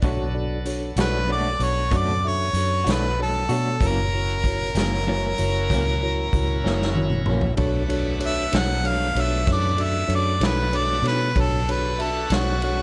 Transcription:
0.02 B1 B2 F#3 A3 B3 D4 F#4 A4 C#5, kick, closed hi-hat
0.34 D4 F#4 A4 D5
0.65 D4 F#4 A4 C#5, closed hi-hat
0.96 B1 A3 D4 F#4 A4 C#5, snare, closed hi-hat
1.00 B4
1.27 B2 A3 D4 F#4 A4 C#5
1.32 D5
1.60 B1 D4 F#4 A4 C#5, closed hi-hat
1.91 F#2 B2 A3 D4 F#4 A4 C#5, kick, closed hi-hat
1.96 D5
2.25 D4 F#4 A4 C#5 E5
2.53 F#2 D4 F#4 A4 C#5, closed hi-hat
2.84 B1 A3 D4 F#4 A4 C#5, closed hi-hat
2.89 B4, snare
3.19 D4 F#4 A4 C#5
3.49 B2 A3 D4 F#4 A4 C#5, closed hi-hat
3.79 F#1 F#2 E3 F#3 A#3 C#4 E4 F#4 A#4 C#5, kick, closed hi-hat
3.86 A#4
4.14 E4 F#4 A#4 C#5
4.44 E4 F#4 A#4 C#5, kick, closed hi-hat
4.75 F#1 E3 A#3 C#4 E4 F#4 A#4 C#5, snare, closed hi-hat
5.07 F#2 E3 A#3 C#4 E4 F#4 A#4 C#5
5.38 F#1 E4 F#4 A#4 C#5, closed hi-hat
5.70 C#2 F#2 E3 E4 F#4 A#4 C#5, kick, closed hi-hat
5.74 A#3 C#4
6.02 E4 F#4 A#4 C#5
6.33 C#2 E4 F#4 A#4 C#5, kick, closed hi-hat
6.64 F#1 E3 A#3 C#4 E4 F#4 A#4 C#5, snare
6.82 snare
6.95 E4 F#4 A#4 C#5, high tom
7.10 mid tom
7.26 A#1 C#4 E4 F#4 A#4 C#5, mid tom
7.30 E3 A#3
7.41 floor tom
7.57 B1 A3 D4 F#4 A4 B4 C#5, kick, ride
7.89 D4 F#4 A4 C#5, ride
8.20 D4 F#4 A4 C#5, ride
8.26 E5
8.52 B1 D4 F#4 A4 C#5, snare, ride
8.57 F#5
8.84 D4 F#4 A4 C#5, ride
8.88 F5
9.15 B1 D4 F#4 A4 C#5, ride
9.21 E5
9.47 F#2 D4 F#4 A4 C#5, kick, snare, ride
9.52 D5
9.77 D4 F#4 A4 D5, ride
9.83 E5
10.08 F#2 D4 F#4 A4 C#5, ride
10.15 D5
10.40 B1 D4 F#4 A4 C#5, snare, ride
10.45 B4
10.72 D4 F#4 A4 C#5, ride
10.77 D5
11.02 B2 D4 F#4 A4 C#5, ride
11.08 B4, snare
11.36 B1 D4 F#4 A4 B4 C#5, kick, ride
11.40 A4
11.69 D4 F#4 A4 B4 C#5, ride
11.99 D4 F#4 A4 E5, ride
12.30 B1 D4 F#4 A4 C#5, snare, ride
12.62 D4 F#4 A4 C#5, ride

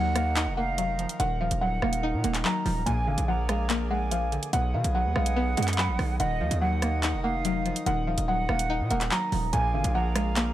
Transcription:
Already playing: D#2 D#3 F3 F#3 D#4 A#4 F#5
0.16 A#3 F5, cross-stick, closed hi-hat
0.36 D#4, clap, closed hi-hat
0.47 F1
0.57 A#3 F5 F#5
0.78 F#3 F5, closed hi-hat
0.99 F3, closed hi-hat
1.09 closed hi-hat
1.20 D#1 D#3 F#5, closed hi-hat
1.41 F3 F5
1.51 D#1, closed hi-hat
1.61 F#3 F#5
1.82 D#1 A#3 F5, cross-stick
1.93 closed hi-hat
2.03 D#4
2.13 A#2
2.24 D#1 A#3 F#5, closed hi-hat
2.34 clap, closed hi-hat
2.45 F#3 A#5, clap
2.66 D#1 F3, open hi-hat
2.86 A#1 A#2 A#3 G#4 D5 G#5, closed hi-hat
3.07 G#1 D3 F5
3.18 A#1, closed hi-hat
3.28 F3 F#5 A#5
3.49 G#3 F5, cross-stick, closed hi-hat
3.70 A#3, clap, closed hi-hat
3.91 G#3 F#5 G#5
4.11 F3 F5, closed hi-hat
4.32 D3, closed hi-hat
4.43 closed hi-hat
4.53 B1 B2 B3 G#4 D#5 F#5, closed hi-hat
4.74 B2 D#3 F5
4.84 B1, closed hi-hat
4.95 F#3 F#5
5.05 D#2
5.16 B1 G#3 F5, cross-stick
5.26 closed hi-hat
5.36 B3
5.57 F#2 G#3 F#5, closed hi-hat
5.63 closed hi-hat
5.68 clap, closed hi-hat
5.73 closed hi-hat
5.78 F#3 B5, clap
5.88 A#1
5.99 B1 D#3, cross-stick, open hi-hat
6.20 D#1 D#3 D#4 D#5 F#5, closed hi-hat
6.41 D#2 F3 F5
6.51 D#2, closed hi-hat
6.61 F#3 F#5
6.82 A#3 F5, cross-stick, closed hi-hat
7.03 D#4, clap, closed hi-hat
7.13 F1
7.24 A#3 F5 F#5
7.45 F#3 F5, closed hi-hat
7.66 F3, closed hi-hat
7.76 closed hi-hat
7.86 D#1 D#3 F#5, closed hi-hat
8.07 F3 F5
8.18 D#1, closed hi-hat
8.28 F#3 F#5
8.49 D#1 A#3 F5, cross-stick
8.59 closed hi-hat
8.70 D#4
8.80 A#2
8.91 D#1 A#3 F#5, closed hi-hat
9.01 clap, closed hi-hat
9.11 F#3 A#5, clap
9.32 D#1 F3, open hi-hat
9.53 A#1 A#2 A#3 F4 G#4 D5 G#5, closed hi-hat
9.74 G#1 D3 F5
9.84 A#1, closed hi-hat
9.95 F3 F#5 A#5
10.16 G#3 F5, cross-stick, closed hi-hat
10.36 A#3, clap, closed hi-hat

